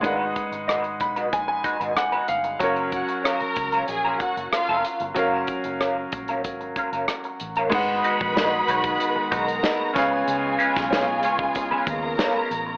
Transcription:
0.01 fingered electric bass G#1, grand piano G#3 D#4 B4, clean electric guitar D4 F4 A#4, kick, closed hi-hat
0.06 grand piano F#5
0.15 clean electric guitar D#4 F#4 B4
0.36 kick, closed hi-hat
0.52 fingered electric bass G#1, muted clean electric guitar stroke, closed hi-hat
0.68 clean electric guitar D#4 F#4 B4, cross-stick, closed hi-hat
0.84 closed hi-hat
1.00 fingered electric bass B1, grand piano B5, muted clean electric guitar stroke, kick, closed hi-hat
1.16 clean electric guitar D#4 F#4 B4, closed hi-hat
1.33 fingered electric bass A#1, grand piano G#5, muted clean electric guitar stroke, kick, closed hi-hat
1.48 grand piano G#5, muted clean electric guitar stroke
1.64 clean electric guitar D#4 F#4 B4, kick, closed hi-hat
1.80 fingered electric bass G#1, clean electric guitar D#4 F#4 B4, closed hi-hat
1.96 grand piano F#5, muted clean electric guitar stroke, cross-stick, closed hi-hat
2.12 clean electric guitar D#4 F#4 B4, closed hi-hat
2.28 fingered electric bass G1, grand piano F5, muted clean electric guitar stroke, closed hi-hat
2.44 muted clean electric guitar stroke, closed hi-hat
2.59 fingered electric bass F#1, grand piano F#3 C#4 A#4, clean electric guitar C#4 F4 A#4, kick, closed hi-hat
2.64 grand piano C#5
2.76 closed hi-hat
2.92 string section F#4 F#5, kick, closed hi-hat
3.08 muted clean electric guitar stroke, closed hi-hat
3.24 clean electric guitar C#4 F4 A#4, string section A#4 A#5, cross-stick, closed hi-hat
3.40 muted fingered electric bass stroke, closed hi-hat
3.56 fingered electric bass C#2, muted clean electric guitar stroke, kick, closed hi-hat
3.72 clean electric guitar C#4 F4 A#4, closed hi-hat
3.88 fingered electric bass A#1, string section G#4 G#5, muted clean electric guitar stroke, closed hi-hat
4.04 clean electric guitar C#4 F4 A#4
4.20 string section F#4 F#5, muted clean electric guitar stroke, kick, closed hi-hat
4.37 fingered electric bass F#1, muted clean electric guitar stroke, closed hi-hat
4.52 string section F4 F5, muted fingered electric bass stroke, muted clean electric guitar stroke, cross-stick, closed hi-hat
4.69 fingered electric bass F1, clean electric guitar C#4 F4 A#4
4.85 muted clean electric guitar stroke, closed hi-hat
5.00 fingered electric bass G1, muted clean electric guitar stroke, closed hi-hat
5.14 fingered electric bass F#1, grand piano F#3 C#4 A#4, clean electric guitar C#4 F4, kick, closed hi-hat
5.19 clean electric guitar A#4, grand piano F5
5.47 kick, closed hi-hat
5.64 fingered electric bass F#1, muted clean electric guitar stroke, closed hi-hat
5.80 clean electric guitar C#4 F4 A#4, cross-stick, closed hi-hat
6.12 fingered electric bass A#1, muted clean electric guitar stroke, kick, closed hi-hat
6.28 clean electric guitar C#4 F4 A#4, closed hi-hat
6.44 fingered electric bass G#1, muted clean electric guitar stroke, kick, closed hi-hat
6.61 muted clean electric guitar stroke, closed hi-hat
6.76 clean electric guitar C#4 F4 A#4, kick, closed hi-hat
6.93 fingered electric bass F#1, clean electric guitar C#4 F4 A#4, closed hi-hat
7.08 muted clean electric guitar stroke, cross-stick, closed hi-hat
7.24 muted clean electric guitar stroke, closed hi-hat
7.40 fingered electric bass A1, closed hi-hat
7.56 clean electric guitar C#4 F4 A#4, closed hi-hat
7.70 fingered electric bass G#1, string section D#3 G#3 B3 F#4 B4 B5, grand piano G#3 D#4 B4, kick, crash
7.75 grand piano F#5
8.04 clean electric guitar D#4 F#4 B4, closed hi-hat
8.21 fingered electric bass A#1, kick
8.36 clean electric guitar D#4 F#4 B4, snare, closed hi-hat
8.52 muted clean electric guitar stroke
8.68 fingered electric bass B1, clean electric guitar D#4 F#4 C#5, closed hi-hat
8.84 muted clean electric guitar stroke, kick, closed hi-hat
9.00 closed hi-hat
9.16 muted clean electric guitar stroke, muted fingered electric bass stroke
9.31 fingered electric bass B1, clean electric guitar D#4 F#4 B4, string section A#4 A#5, kick, closed hi-hat
9.48 muted clean electric guitar stroke, closed hi-hat
9.63 clean electric guitar D#4 F#4 B4, snare, closed hi-hat
9.94 fingered electric bass C#2, grand piano C#3 C#4 B4, string section C#3 F4 G#4 G#5, kick, snare, closed hi-hat
9.98 grand piano F5
10.11 muted clean electric guitar stroke
10.28 fingered electric bass C#2, closed hi-hat
10.59 clean electric guitar C#4 F4 B4, closed hi-hat
10.76 fingered electric bass B1, kick, snare
10.91 clean electric guitar C#4 F4 B4, snare, closed hi-hat
11.07 muted clean electric guitar stroke
11.23 fingered electric bass C#2, clean electric guitar C#4 F4 C#5, closed hi-hat
11.39 muted clean electric guitar stroke, kick
11.55 muted clean electric guitar stroke, kick, closed hi-hat
11.71 clean electric guitar C#4 F4 B4, muted fingered electric bass stroke
11.87 fingered electric bass D#2, string section A#4 A#5, muted clean electric guitar stroke, kick, closed hi-hat
12.03 muted clean electric guitar stroke
12.19 clean electric guitar C#4 F4 B4, snare, closed hi-hat
12.51 fingered electric bass A1, muted clean electric guitar stroke, closed hi-hat
12.67 muted clean electric guitar stroke

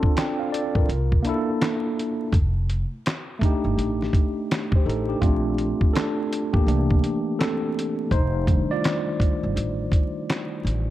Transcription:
Already playing: tine electric piano C4 D4 F4 A4
0.03 kick
0.17 tine electric piano D5 G5, snare, clap, closed hi-hat
0.39 tine electric piano C5 F5
0.52 tine electric piano A4 D5, closed hi-hat
0.75 upright bass A1, tine electric piano F4 A#4, kick
0.89 upright bass C2, closed hi-hat
1.12 kick
1.22 tine electric piano A#3 D4, closed hi-hat
1.27 tine electric piano E4 A4
1.61 snare, clap, closed hi-hat
1.99 closed hi-hat
2.33 upright bass F1, kick, closed hi-hat
2.69 closed hi-hat
3.06 snare, clap, closed hi-hat
3.39 tine electric piano A3 D4, kick
3.43 tine electric piano D#4 G4, closed hi-hat
3.65 upright bass G1
3.77 upright bass A1, closed hi-hat
4.02 snare
4.13 kick, closed hi-hat
4.51 snare, clap, closed hi-hat
4.72 tine electric piano C5, kick
4.76 tine electric piano G4
4.86 upright bass A1, tine electric piano D#4 A4, closed hi-hat
5.09 tine electric piano D4 G4
5.21 upright bass A#1, tine electric piano A3 C4 D4 F4, kick, closed hi-hat
5.58 closed hi-hat
5.81 kick
5.93 tine electric piano D4 A4, snare, closed hi-hat
5.97 clap
6.33 closed hi-hat
6.53 upright bass A1, tine electric piano A#3 G4, kick
6.67 upright bass C2, tine electric piano E3 A3 A#3 D4, closed hi-hat
6.91 kick
7.04 closed hi-hat
7.39 tine electric piano C4 A4, snare, clap, closed hi-hat
7.79 closed hi-hat
8.11 upright bass F1, tine electric piano D#4 C5, kick, closed hi-hat
8.47 tine electric piano D#3 G3 A3 D4, kick, closed hi-hat
8.71 tine electric piano F4 D5
8.84 snare, clap, closed hi-hat
9.20 kick, closed hi-hat
9.43 upright bass G1
9.56 upright bass A1, closed hi-hat
9.92 kick, closed hi-hat
10.30 snare, clap, closed hi-hat
10.65 upright bass A1, closed hi-hat

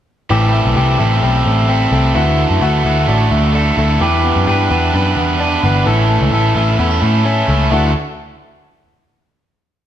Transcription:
0.30 picked electric bass A1, overdriven electric guitar A2 E3 G3 C4 E4 A4, clean electric guitar E3 G4
0.53 clean electric guitar A3
0.65 picked electric bass B1
0.76 picked electric bass C2, overdriven electric guitar G3 C4 E4 A4, clean electric guitar G4
0.99 picked electric bass A1, overdriven electric guitar G3 C4 E4 A4, clean electric guitar A3
1.22 picked electric bass B1, overdriven electric guitar G3 C4 E4 A4, clean electric guitar C4
1.46 picked electric bass A1, clean electric guitar A3
1.68 overdriven electric guitar G3 C4 E4 A4, clean electric guitar C4
1.91 picked electric bass C2, overdriven electric guitar G3 C4 E4 A4, clean electric guitar A3
2.14 picked electric bass D2, overdriven electric guitar D3 A3 E4 F#4 A4, clean electric guitar E3 F#4
2.39 clean electric guitar A3
2.50 picked electric bass F#2
2.60 picked electric bass D2, overdriven electric guitar A3 E4 F#4 A4, clean electric guitar F#4
2.83 picked electric bass D2, clean electric guitar A3, overdriven electric guitar E4 F#4 A4
3.06 picked electric bass A1, overdriven electric guitar A3 E4 F#4 A4, clean electric guitar D4
3.31 picked electric bass D2, clean electric guitar A3
3.53 overdriven electric guitar A3 E4 F#4 A4, clean electric guitar D4
3.77 picked electric bass D2, clean electric guitar A3, overdriven electric guitar E4 F#4 A4
4.00 picked electric bass E2, overdriven electric guitar E3 G3 D4 E4 B4, clean electric guitar E3 G4
4.24 clean electric guitar B3
4.36 picked electric bass F#2
4.47 picked electric bass G2, overdriven electric guitar G3 D4 E4 B4, clean electric guitar G4
4.70 picked electric bass E2, clean electric guitar B3, overdriven electric guitar D4 E4 B4
4.93 picked electric bass F#2, overdriven electric guitar G3 D4 E4 B4, clean electric guitar D4
5.17 picked electric bass E2, clean electric guitar B3
5.40 overdriven electric guitar G3 D4 E4 B4, clean electric guitar D4
5.63 picked electric bass G1, clean electric guitar B3, overdriven electric guitar D4 E4 B4
5.86 picked electric bass A1, overdriven electric guitar A2 E3 A3 C#4 E4 A4, clean electric guitar E3 A4
6.09 clean electric guitar A3
6.21 picked electric bass C#2
6.32 picked electric bass A1, overdriven electric guitar A3 C#4 E4 A4, clean electric guitar A4
6.55 picked electric bass A1, clean electric guitar A3, overdriven electric guitar A3 C#4 E4 A4
6.78 picked electric bass E2, overdriven electric guitar A3 C#4 E4 A4, clean electric guitar B3
6.91 clean electric guitar C#4
7.02 picked electric bass A2, clean electric guitar A3
7.24 overdriven electric guitar A3 C#4 E4 A4, clean electric guitar C#4
7.47 picked electric bass C#2, clean electric guitar A3, overdriven electric guitar A3 C#4 E4 A4
7.71 picked electric bass D2, overdriven electric guitar D3 A3 E4 F#4 A4, clean electric guitar E3 A3 D4 F#4

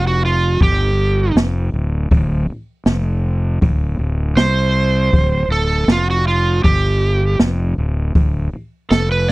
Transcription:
Already playing: fingered electric bass F1
0.07 electric slide guitar F#4
0.25 electric slide guitar F4
0.60 fingered electric bass G1, electric slide guitar G4, kick, open hi-hat
1.35 fingered electric bass F1, snare, open hi-hat
1.73 fingered electric bass D1
2.11 fingered electric bass D1, kick, open hi-hat
2.50 muted fingered electric bass stroke
2.85 fingered electric bass F1, snare, open hi-hat
3.61 fingered electric bass D1, kick, open hi-hat
3.99 fingered electric bass D1
4.36 fingered electric bass C2, electric slide guitar C5, snare, open hi-hat
5.13 fingered electric bass D1, kick, open hi-hat
5.49 fingered electric bass D1, electric slide guitar A4
5.87 fingered electric bass F1, snare, open hi-hat
5.92 electric slide guitar F4
6.10 electric slide guitar F#4
6.28 electric slide guitar F4
6.64 fingered electric bass G1, electric slide guitar G4, kick, open hi-hat
7.39 fingered electric bass F1, snare, open hi-hat
7.78 fingered electric bass D1
8.15 fingered electric bass D1, kick, open hi-hat
8.53 muted fingered electric bass stroke
8.91 fingered electric bass F1, electric slide guitar A4, snare, open hi-hat
9.12 electric slide guitar B4
9.29 electric slide guitar D5

